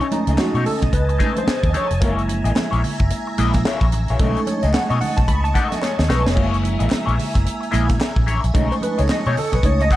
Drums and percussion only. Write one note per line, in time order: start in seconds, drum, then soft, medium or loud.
0.01 closed hi-hat soft
0.11 closed hi-hat medium
0.11 muted conga soft
0.11 high conga medium
0.27 closed hi-hat medium
0.38 snare loud
0.38 clap loud
0.38 muted conga soft
0.38 high conga medium
0.55 closed hi-hat soft
0.66 open hi-hat medium
0.66 muted conga soft
0.66 low conga medium
0.81 kick medium
0.81 snare soft
0.81 closed hi-hat soft
0.93 kick medium
0.93 closed hi-hat medium
0.93 muted conga soft
1.09 closed hi-hat soft
1.20 kick medium
1.20 clap medium
1.20 closed hi-hat medium
1.20 muted conga soft
1.36 closed hi-hat medium
1.36 high conga medium
1.48 snare loud
1.48 clap medium
1.48 muted conga soft
1.63 kick medium
1.63 closed hi-hat soft
1.63 high conga medium
1.74 closed hi-hat medium
1.74 muted conga soft
1.74 high conga medium
1.91 closed hi-hat soft
2.01 kick loud
2.01 closed hi-hat loud
2.01 low conga medium
2.19 closed hi-hat soft
2.28 closed hi-hat medium
2.28 high conga medium
2.45 closed hi-hat medium
2.56 snare loud
2.56 clap medium
2.56 muted conga soft
2.56 high conga medium
2.73 closed hi-hat soft
2.84 open hi-hat medium
2.84 muted conga soft
2.84 low conga medium
2.99 kick medium
2.99 closed hi-hat soft
3.10 closed hi-hat medium
3.10 muted conga soft
3.38 clap medium
3.38 closed hi-hat medium
3.54 kick loud
3.54 snare soft
3.54 closed hi-hat medium
3.54 high conga medium
3.65 snare loud
3.65 clap loud
3.65 muted conga soft
3.81 kick medium
3.81 closed hi-hat soft
3.81 high conga medium
3.92 closed hi-hat medium
3.92 high conga medium
4.08 closed hi-hat soft
4.19 kick loud
4.19 closed hi-hat loud
4.19 muted conga soft
4.19 low conga medium
4.36 closed hi-hat soft
4.47 closed hi-hat medium
4.47 muted conga soft
4.47 high conga medium
4.62 closed hi-hat soft
4.74 snare loud
4.74 clap loud
4.74 high conga medium
4.90 closed hi-hat soft
5.01 open hi-hat medium
5.01 muted conga soft
5.01 high conga soft
5.01 low conga medium
5.16 kick medium
5.16 snare soft
5.16 closed hi-hat medium
5.28 kick medium
5.28 closed hi-hat medium
5.28 muted conga soft
5.45 closed hi-hat soft
5.55 kick medium
5.55 clap medium
5.55 closed hi-hat medium
5.55 muted conga soft
5.72 snare soft
5.72 closed hi-hat medium
5.72 high conga medium
5.82 snare medium
5.82 clap loud
5.99 snare medium
5.99 high conga medium
6.10 snare medium
6.10 high conga medium
6.26 snare medium
6.37 kick loud
6.37 crash medium
6.37 muted conga soft
6.37 low conga medium
6.54 closed hi-hat soft
6.64 closed hi-hat medium
6.64 muted conga soft
6.64 high conga medium
6.80 closed hi-hat medium
6.90 snare loud
6.90 clap loud
6.90 high conga medium
7.08 closed hi-hat soft
7.19 open hi-hat medium
7.19 muted conga soft
7.19 low conga medium
7.35 kick medium
7.35 snare soft
7.35 closed hi-hat medium
7.46 closed hi-hat medium
7.63 closed hi-hat soft
7.72 clap medium
7.72 closed hi-hat medium
7.72 muted conga soft
7.89 kick loud
7.89 snare soft
7.89 closed hi-hat medium
7.89 high conga medium
8.01 snare loud
8.01 clap loud
8.01 muted conga soft
8.16 kick medium
8.16 high conga medium
8.28 closed hi-hat medium
8.28 muted conga soft
8.28 high conga medium
8.44 closed hi-hat medium
8.55 kick loud
8.55 closed hi-hat loud
8.55 muted conga soft
8.55 low conga medium
8.72 closed hi-hat soft
8.81 closed hi-hat medium
8.81 muted conga soft
8.81 high conga medium
8.98 closed hi-hat medium
9.09 snare loud
9.09 clap loud
9.09 muted conga soft
9.09 high conga medium
9.26 closed hi-hat soft
9.37 open hi-hat medium
9.37 muted conga soft
9.37 low conga medium
9.52 kick medium
9.52 snare soft
9.52 closed hi-hat medium
9.63 kick medium
9.63 closed hi-hat medium
9.63 muted conga soft
9.80 closed hi-hat soft
9.91 kick medium
9.91 clap medium
9.91 closed hi-hat medium
9.91 muted conga soft